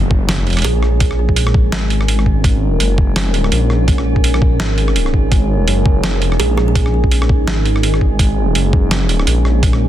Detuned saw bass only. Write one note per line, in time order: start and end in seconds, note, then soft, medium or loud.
0.00 0.43 F#1 loud
0.43 0.63 F1 loud
0.64 1.71 A#1 loud
1.72 2.43 G#1 loud
2.44 2.79 G#1 medium
2.80 3.51 F#1 loud
3.52 4.59 A#1 medium
4.60 5.13 G#1 loud
5.14 5.30 G#1 loud
5.32 5.66 G#1 medium
5.68 6.18 F#1 loud
6.18 6.38 F1 loud
6.39 7.46 A#1 loud
7.47 8.18 G#1 loud
8.19 8.54 G#1 loud
8.55 9.26 F#1 loud
9.27 9.88 A#1 loud